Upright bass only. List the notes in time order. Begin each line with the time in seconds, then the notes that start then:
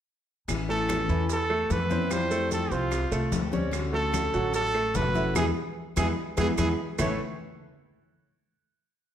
0.48 A1
1.09 E2
1.70 F2
2.71 C2
3.11 C2
3.32 D2
4.34 A1
4.95 E1
5.35 E2
5.97 E2
6.37 E2
6.58 E2
6.99 A1